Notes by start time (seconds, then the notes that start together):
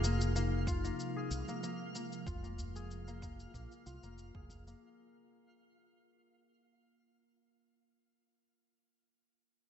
Already playing: F1 C3 F3 G#3 D#4 F4 G#4 F5
0.04 A#3, cabasa
0.21 cabasa
0.36 A#3, cabasa
0.67 F4, kick, udu, cabasa
0.84 A#3, cabasa
1.00 cabasa
1.16 G#4
1.31 C2, cabasa
1.48 A#3, cabasa
1.63 A#3, cabasa
1.95 A#3, cabasa
2.12 cabasa
2.27 F1 F4, kick, udu, cabasa
2.44 A#3, cabasa
2.58 udu, cabasa
2.76 G#4, cabasa
2.91 cabasa
3.08 A#3, cabasa
3.22 A#3, kick, cabasa
3.40 cabasa
3.54 A#1 A#3, kick, cabasa
3.72 cabasa
3.86 C2 F4, cabasa
4.03 F1 A#3, cabasa
4.18 cabasa
4.35 F1 G#4, kick
4.50 kick, cabasa
4.67 A#3, cabasa